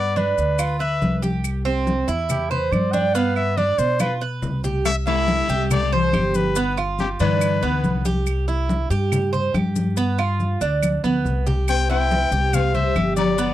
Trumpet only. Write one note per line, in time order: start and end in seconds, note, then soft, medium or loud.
0.00 0.19 D5 loud
0.17 0.79 B4 medium
0.79 1.19 E5 loud
2.30 2.52 G4 medium
2.50 2.74 B4 medium
2.72 2.94 D5 medium
2.92 3.16 G5 loud
3.15 3.35 F5 medium
3.36 3.59 E5 loud
3.57 3.80 D5 loud
3.79 4.00 C5 loud
4.01 4.14 B4 medium
4.86 4.95 E5 loud
5.07 5.67 E5 loud
5.72 5.95 D5 loud
5.93 6.37 C5 loud
6.36 6.78 B4 medium
7.00 7.09 G4 medium
7.21 8.02 B4 loud
11.69 11.88 G5 loud
11.91 12.56 G5 loud
12.54 12.77 F5 loud
12.75 13.16 E5 loud
13.17 13.54 D5 loud